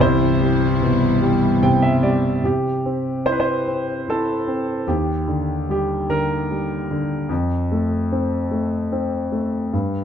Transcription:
0.00 2.40 C2 medium
0.00 1.61 C3 medium
0.00 2.41 E3 medium
0.00 2.40 G3 medium
0.00 2.41 E4 medium
0.00 1.59 E4 medium
0.00 1.59 C5 medium
0.40 1.20 G3 medium
0.81 2.40 B2 medium
1.22 2.01 G3 medium
1.63 2.41 C3 medium
1.63 1.81 G5 medium
1.82 2.01 E5 medium
2.03 2.42 G3 medium
2.03 2.41 D5 medium
2.43 4.84 C3 soft
2.43 3.28 G4 medium
2.86 3.66 C4 soft
3.26 4.06 E4 soft
3.26 3.32 C5 medium
3.32 3.39 B4 medium
3.40 4.09 C5 medium
3.67 4.46 C4 soft
4.08 4.86 E4 soft
4.08 4.85 A4 medium
4.48 4.87 C4 soft
4.87 7.26 D#2 soft
4.87 5.69 G4 medium
5.28 6.08 D3 soft
5.69 6.49 G3 soft
5.69 6.11 G4 medium
6.09 6.89 D3 soft
6.09 6.86 A#4 medium
6.50 7.28 G3 soft
6.91 7.29 D3 soft
7.29 9.68 F2 medium
7.72 8.50 A3 soft
8.12 8.91 C4 soft
8.51 9.31 A3 soft
8.92 9.70 C4 soft
9.32 9.71 A3 soft
9.73 10.04 G2 soft

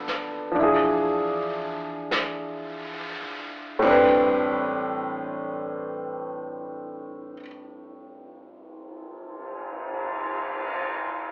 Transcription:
0.00 0.52 B1 medium
0.00 0.50 F3 soft
0.00 0.56 B3 soft
0.00 0.53 D4 soft
0.00 0.59 A4 soft
0.08 snare soft
0.52 3.81 F3 medium
0.52 3.83 D4 soft
0.56 3.18 E2 medium
0.56 3.85 E4 soft
0.56 brush sweep soft
0.63 3.87 G#4 medium
2.11 brush sweep soft
2.11 snare soft
2.11 hi-hat pedal soft
3.22 muted upright bass stroke soft
3.79 7.34 A1 medium
3.79 7.34 A2 medium
3.79 7.36 G3 soft
3.79 kick soft
3.79 ride medium
3.85 7.39 C4 soft
3.85 7.42 D4 medium
3.91 7.46 B4 medium
5.00 cymbal swell soft

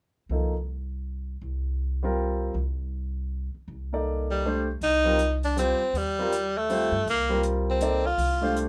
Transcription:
0.29 1.39 C2 medium
0.29 0.52 F3 soft
0.29 0.53 A#3 soft
0.29 0.53 D#4 soft
0.29 0.53 A4 soft
1.41 2.51 C2 medium
2.03 2.52 G3 medium
2.03 2.53 C4 medium
2.03 2.53 F4 medium
2.03 2.53 A#4 medium
2.54 3.50 C2 medium
3.54 muted upright bass stroke soft
3.68 4.77 C2 medium
3.93 4.41 A#3 soft
3.93 4.41 D#4 soft
3.93 4.42 A4 soft
3.93 4.42 D5 medium
4.31 4.65 G3 medium
4.45 4.66 A3 medium
4.45 4.66 D4 soft
4.45 4.66 G4 soft
4.45 4.66 C5 medium
4.81 5.76 C2 medium
4.81 5.40 D#4 medium
4.81 open hi-hat soft
5.04 5.17 G3 soft
5.04 5.18 C4 soft
5.04 5.18 F4 soft
5.04 5.18 A#4 medium
5.19 closed hi-hat soft
5.43 5.56 D4 medium
5.43 open hi-hat soft
5.56 5.78 G3 soft
5.56 5.78 C4 soft
5.56 5.99 C4 medium
5.56 5.78 F4 soft
5.56 5.79 G4 medium
5.56 closed hi-hat soft
5.79 muted upright bass stroke soft
5.93 6.88 D#2 medium
5.93 open hi-hat soft
5.98 6.59 G3 medium
6.19 6.31 G3 medium
6.19 6.31 C4 medium
6.19 6.31 F4 medium
6.19 6.32 A#4 medium
6.33 closed hi-hat soft
6.58 7.08 A3 medium
6.69 6.90 G3 medium
6.69 6.91 C4 soft
6.69 6.91 F4 medium
6.69 6.92 C5 medium
6.69 open hi-hat soft
6.91 7.04 G2 medium
7.05 8.14 C2 medium
7.05 open hi-hat soft
7.09 7.43 A#3 medium
7.29 7.78 G3 medium
7.29 7.78 C4 soft
7.29 7.78 F4 soft
7.29 7.79 A#4 medium
7.43 closed hi-hat soft
7.70 8.08 C4 medium
7.81 8.02 A#3 soft
7.81 8.03 D#4 soft
7.81 8.03 A4 soft
7.81 8.03 D5 medium
7.81 closed hi-hat soft
8.06 8.57 F4 medium
8.18 8.69 C2 medium
8.18 open hi-hat soft
8.41 8.69 A3 medium
8.41 8.69 D4 soft
8.41 8.69 G4 soft
8.41 8.69 C5 medium
8.57 closed hi-hat soft

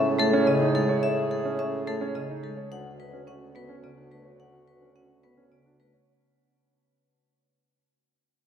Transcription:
0.00 2.56 A2 medium
0.00 2.53 G#4 medium
0.19 0.37 A3 medium
0.19 0.37 A4 medium
0.33 0.51 C#4 medium
0.47 0.65 C#3 medium
0.47 0.65 D#5 medium
0.61 0.79 D#4 medium
0.75 0.93 G#3 medium
0.75 0.93 A4 medium
0.89 1.07 C#5 medium
1.03 1.21 E5 medium
1.31 1.49 A4 medium
1.45 1.63 C#4 medium
1.59 1.77 C#4 medium
1.59 1.77 E5 medium
1.87 2.05 A3 medium
1.87 2.05 A4 medium
2.01 2.19 C#4 medium
2.15 2.33 C#3 medium
2.15 2.33 D#5 medium
2.29 2.47 D#4 medium
2.43 2.61 G#3 medium
2.43 2.62 A4 medium
2.57 2.75 C#5 medium
2.71 5.92 D2 medium
2.71 5.89 F#4 medium
2.71 2.90 F#5 medium
3.00 3.18 B4 medium
3.13 3.31 C#4 medium
3.27 3.45 C#4 medium
3.27 3.46 F#5 medium
3.55 3.73 B3 medium
3.55 3.74 B4 medium
3.69 3.87 C#4 medium
3.83 4.02 C#3 medium
3.83 4.02 D5 soft
3.97 4.16 D4 soft
4.11 4.30 A3 soft
4.11 4.30 B4 soft
4.25 4.44 C#5 medium
4.40 4.58 F#5 medium
4.68 4.86 B4 soft
4.82 5.00 C#4 soft
4.96 5.14 C#4 soft
4.96 5.14 F#5 medium
5.23 5.42 B3 medium
5.23 5.42 B4 medium
5.37 5.56 C#4 medium
5.52 5.70 C#3 soft
5.52 5.70 D5 soft
5.66 5.84 D4 soft
5.80 5.98 A3 soft
5.80 5.98 B4 soft
5.94 6.12 C#5 soft

